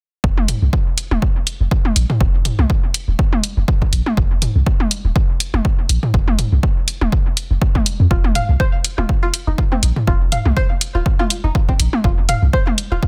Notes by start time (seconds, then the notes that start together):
0.24 F1, kick
0.38 high tom
0.48 closed hi-hat, mid tom
0.62 C2
0.73 kick
0.98 closed hi-hat
1.11 D#1, high tom
1.22 kick
1.47 closed hi-hat
1.60 F1
1.71 kick
1.85 high tom
1.96 A#1, closed hi-hat
2.10 mid tom
2.21 F1, kick
2.45 closed hi-hat, mid tom
2.59 C2, high tom
2.70 kick
2.94 closed hi-hat
3.08 D#1
3.19 kick
3.33 high tom
3.44 closed hi-hat
3.57 F1
3.68 kick
3.82 kick
3.93 A#1, closed hi-hat
4.06 high tom
4.17 F1, kick
4.42 closed hi-hat, mid tom
4.55 C2
4.66 kick
4.80 high tom
4.91 closed hi-hat
5.05 D#1
5.16 kick
5.40 closed hi-hat
5.54 F1, high tom
5.65 kick
5.89 A#1, closed hi-hat
6.03 mid tom
6.14 F1, kick
6.28 high tom
6.39 closed hi-hat, mid tom
6.52 C2
6.63 kick
6.88 closed hi-hat
7.01 D#1, high tom
7.12 kick
7.37 closed hi-hat
7.51 F1
7.62 kick
7.75 kick, high tom
7.86 closed hi-hat
8.00 F2
8.11 F1 F4, kick
8.24 high tom
8.35 F5, closed hi-hat, mid tom
8.49 C2
8.60 C5, kick
8.84 closed hi-hat
8.98 D#1 F4, high tom
9.09 kick
9.23 F4
9.34 closed hi-hat
9.47 F1 D#4
9.58 kick
9.72 C4, high tom
9.83 A#1, closed hi-hat
9.96 mid tom
10.07 F1 F4, kick
10.32 F5, closed hi-hat, mid tom
10.45 C2, high tom
10.56 C5, kick
10.81 closed hi-hat
10.95 D#1 F4
11.06 kick
11.19 F4, high tom
11.30 closed hi-hat
11.44 F1 D#4
11.55 kick
11.69 C4, kick
11.80 A#1, closed hi-hat
11.93 high tom
12.04 F1 F4, kick
12.29 F5, closed hi-hat, mid tom
12.42 C2
12.53 C5, kick
12.67 high tom
12.78 closed hi-hat
12.92 D#1 F4
13.03 kick